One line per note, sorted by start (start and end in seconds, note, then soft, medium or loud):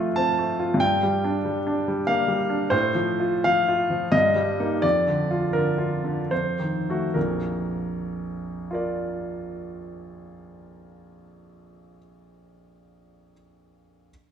0.00 0.77 F2 soft
0.00 0.38 A3 soft
0.00 0.59 F4 soft
0.00 0.16 C6 medium
0.16 0.51 C4 soft
0.16 0.81 A5 medium
0.38 0.72 A3 soft
0.59 0.81 F4 soft
0.74 2.65 G2 soft
0.80 2.08 G5 medium
1.03 1.38 G3 soft
1.24 1.59 D4 soft
1.45 1.79 G3 soft
1.67 2.00 D4 soft
1.88 2.21 G3 soft
2.07 2.42 A#3 soft
2.07 2.39 F5 medium
2.28 2.63 G3 soft
2.50 2.72 D4 soft
2.70 4.08 A2 soft
2.70 3.43 C5 medium
2.95 3.35 F3 soft
3.20 3.58 F4 soft
3.44 3.81 F3 soft
3.44 4.13 F5 medium
3.68 4.04 F4 soft
3.90 4.13 F3 soft
4.12 4.81 G2 soft
4.12 4.83 D#5 medium
4.35 4.74 G3 soft
4.60 4.81 A#3 soft
4.60 4.81 D#4 soft
4.82 6.27 F2 soft
4.82 5.53 D5 medium
5.07 5.44 D3 soft
5.31 5.69 F4 soft
5.53 5.94 D3 soft
5.53 6.31 A#4 medium
5.78 6.20 F4 soft
6.04 6.31 D3 soft
6.31 7.13 F2 soft
6.31 7.15 C5 soft
6.60 7.05 D#3 soft
6.90 7.13 A3 soft
6.90 7.14 F#4 soft
7.14 11.97 A#1 soft
7.14 11.97 F2 soft
7.14 8.71 A#4 soft
8.71 13.32 F4 soft
8.71 13.33 A#4 soft
8.71 13.33 D5 soft